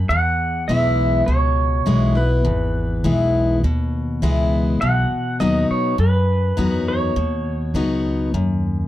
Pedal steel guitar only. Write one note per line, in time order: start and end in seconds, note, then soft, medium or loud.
0.09 0.71 F#5 loud
0.68 1.26 E5 medium
1.26 2.18 C#5 medium
2.17 3.30 B4 medium
4.81 5.41 F#5 loud
5.40 5.67 D#5 medium
5.71 6.00 C#5 medium
6.00 6.88 B4 medium
6.88 8.01 C#5 medium